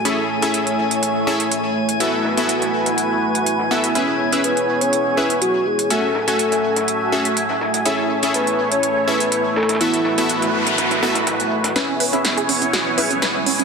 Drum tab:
HH |x-----x-x-x---x-x-----x-x-----x-|x-----x-x-x---x-x-----x-x-----x-|x-----x-x-x---x-x-----x-x-----x-|x-----x-x-x---x-x-----x-x-----x-|
TB |----x-------x---x-------x---x---|----x---x---x---x---x---x-------|----x---x---x---x-------x---x---|x---x-------x---x---x---x---x---|
SD |--------------------------------|----o-----o---o-----------o-o-o-|--------------------------------|----o-----o---o-----------o-o-o-|

HH |x-----x-x-x---x-x-----x-x-----x-|x-x---x-x-x---x-x-x---x-x-x---x-|x---o-x-x-x-o-x-x---o-x-x---o-x-|
TB |x---x---x---x---x---x---x---xxxx|x---x---x---x-----x-x-x-x---x-x-|--------------------------------|
SD |----------------------------oooo|----o-----o---o-o-o-o-o-o-----o-|o-------o-------o-------o-------|